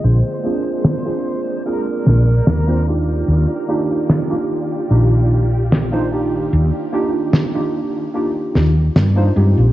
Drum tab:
SD |--o--oo-|--o---o-|--o--oo-|